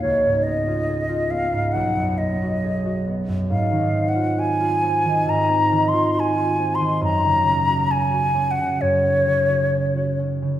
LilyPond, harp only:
\new Staff \with { instrumentName = "Harp" } { \time 4/4 \key ges \major \tempo 4 = 68 <des, aes'>16 aes,16 ces'16 f'16 aes'16 f'16 ces'16 aes,16 b,,16 fis,16 b16 fis'16 gis'16 fis'16 b16 fis,16 | aes,16 ees16 c'16 f'16 ges'16 f'16 c'16 ees16 aes,16 c'16 ees16 f'16 ges'16 f'16 c'16 ees16 | ges,16 des16 des'16 ges'16 des'16 ges'16 des'16 des16 ges,16 des'16 des16 ges'16 des'16 ges'16 des'16 des16 | }